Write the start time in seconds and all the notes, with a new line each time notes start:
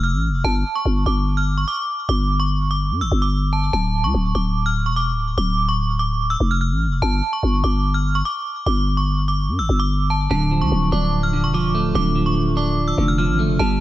Already playing: F1
0.03 F6
0.14 A1
0.29 F1
0.44 G1 A5
0.76 C#6
0.85 G1
1.06 G1 D6
1.37 F6
1.58 C#6
1.68 D6
2.09 G1 D6
2.40 C#6
2.71 D6
2.91 G2
3.01 G1 E6
3.12 G1
3.22 D6
3.53 A5
3.73 D1 A5
4.04 D2 C#6
4.14 D1
4.35 D1 D6
4.66 F6
4.86 E1 C#6
4.96 D6
5.12 D1
5.38 D1 D6
5.69 C#6
5.99 D6
6.30 E6
6.40 F1
6.51 F6
6.61 F6
6.71 A1
6.87 F1
7.02 G1 A5
7.33 C#6
7.43 G1
7.64 G1 D6
7.94 F6
8.15 C#6
8.25 D6
8.66 G1 D6
8.97 C#6
9.28 D6
9.49 G2
9.59 G1 E6
9.69 G1
9.80 D6
10.10 A5
10.31 D1 D3 A5
10.51 F3
10.62 D2 C#6
10.72 D1
10.92 D1 D4 D6
11.23 F6
11.33 D3
11.44 E1 C#6
11.54 F3 D6
11.69 D1
11.75 A3
11.95 D1 D3 D6
12.16 F3
12.26 C#6
12.57 D4 D6
12.88 E6
12.98 F1 D3
13.08 F6
13.18 F3 F6
13.29 A1
13.39 A3
13.44 F1
13.59 G1 G3 A5